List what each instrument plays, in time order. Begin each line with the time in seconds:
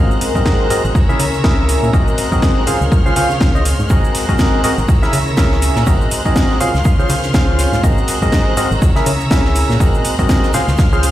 Already playing: synth stab G#2 C4 F#4 G#4 A#4 D#5, ambient pad A#4 G#5 C6, violin section C5 A#5 F#6
0.11 shaker
0.21 open hi-hat, shaker
0.35 synth stab G#2 C4 F#4 G#4 A#4 D#5, fm bass G#2, kick, shaker
0.46 kick, snare, shaker
0.70 synth stab C4 F#4 G#4 A#4 D#5, open hi-hat, shaker
0.84 fm bass G#1, shaker
0.95 fm bass C#2, violin section C#5 E6, kick, shaker
1.09 synth stab C#3 C#4 E4 G#4 A#4 E5, shaker
1.20 fm bass C#3, open hi-hat, shaker
1.34 shaker
1.44 fm bass C#2, synth stab C#3 C#4 E4 G#4 A#4 E5, kick, snare, shaker
1.69 open hi-hat, shaker
1.83 fm bass A#2, shaker
1.93 fm bass G#1, synth stab G#2 C4 F#4 G#4 A#4 D#5, violin section C5 F#6, kick, shaker
2.08 shaker
2.18 open hi-hat, shaker
2.32 synth stab G#2 C4 F#4 G#4 A#4 D#5, fm bass G#2, kick, shaker
2.42 kick, snare, shaker
2.67 synth stab C#3 C#4 F4 G#4 C5 F5, violin section C#5 C6 F6, open hi-hat, shaker
2.81 fm bass C#2, shaker
2.92 fm bass C#2, kick, shaker
3.06 synth stab C#3 C#4 F4 G#4 C5 F5, shaker
3.16 synth stab C#3 C#4 F4 G#4 C5 F5, fm bass C#3, open hi-hat, shaker
3.30 snare, shaker
3.41 fm bass C#2, kick, snare, shaker
3.55 synth stab C#3 C#4 F4 G#4 C5 D#5, shaker
3.65 open hi-hat, shaker
3.79 fm bass G#2, shaker
3.90 fm bass G#1, synth stab G#2 C4 F#4 G#4 A#4 D#5, violin section C5 A#5 F#6, kick, shaker
4.04 shaker
4.15 snare, open hi-hat, shaker
4.29 fm bass G#2, synth stab G#2 C4 F#4 G#4 A#4 D#5, kick, shaker
4.38 kick, snare, shaker
4.64 synth stab C4 F#4 G#4 A#4 D#5, snare, open hi-hat, shaker
4.78 fm bass G#1, shaker
4.88 fm bass C#2, violin section C#5 E6, kick, shaker
5.02 synth stab C#3 C#4 E4 G#4 A#4 E5, snare, shaker
5.13 fm bass C#3, open hi-hat, shaker
5.27 shaker
5.37 fm bass C#2, synth stab C#3 C#4 E4 G#4 A#4 E5, kick, snare, shaker
5.52 snare
5.62 open hi-hat, shaker
5.76 fm bass A#2, snare, shaker
5.87 fm bass G#1, synth stab G#2 C4 F#4 G#4 A#4 D#5, violin section C5 F#6, kick, shaker
6.01 shaker
6.11 open hi-hat, shaker
6.25 synth stab G#2 C4 F#4 G#4 A#4 D#5, fm bass G#2, kick, shaker
6.36 kick, snare, shaker
6.50 snare
6.60 synth stab C#3 C#4 F4 G#4 C5 F5, violin section C#4 C6 F6, open hi-hat, shaker
6.75 fm bass C#2, snare, shaker
6.84 fm bass C#2, kick, shaker
6.99 synth stab C#3 C#4 F4 G#4 C5 F5, shaker
7.09 fm bass C#3, open hi-hat, shaker
7.23 snare, closed hi-hat, shaker
7.34 fm bass C#2, synth stab C#3 C#4 F4 G#4 C5 F5, kick, snare, shaker
7.58 snare, open hi-hat, shaker
7.73 fm bass G#2, snare, shaker
7.83 fm bass G#1, synth stab G#2 C4 F#4 G#4 A#4 D#5, ambient pad A#4, violin section C5 A#5 F#6, kick, shaker
7.98 shaker
8.07 snare, open hi-hat, shaker
8.22 fm bass G#2, synth stab G#2 C4 F#4 G#4 A#4 D#5, kick, shaker
8.32 kick, snare, shaker
8.57 synth stab C4 F#4 G#4 A#4 D#5, open hi-hat, shaker
8.71 fm bass G#1, shaker
8.82 fm bass C#2, violin section C#5 E6, kick, shaker
8.95 synth stab C#3 C#4 E4 G#4 A#4 E5, snare, shaker
9.06 fm bass C#3, open hi-hat, shaker
9.21 shaker
9.27 ambient pad G#5 C6
9.31 fm bass C#2, synth stab C#3 C#4 E4 G#4 A#4 E5, kick, snare, shaker
9.45 snare
9.55 open hi-hat, shaker
9.70 fm bass A#2, snare, shaker
9.80 fm bass G#1, synth stab G#2 C4 F#4 G#4 A#4 D#5, violin section C5 F#6, kick, shaker
9.94 shaker
10.05 open hi-hat, shaker
10.19 fm bass G#2, synth stab G#2 C4 F#4 G#4 A#4 D#5, kick, shaker
10.29 kick, snare, shaker
10.43 snare, shaker
10.53 synth stab C#3 C#4 F4 G#4 C5 F5, violin section C#4 C6 F6, snare, open hi-hat, shaker
10.67 fm bass C#2, snare, shaker
10.78 fm bass C#2, kick, snare, shaker
10.93 synth stab C#3 C#4 F4 G#4 C5 F5, shaker
11.03 open hi-hat, shaker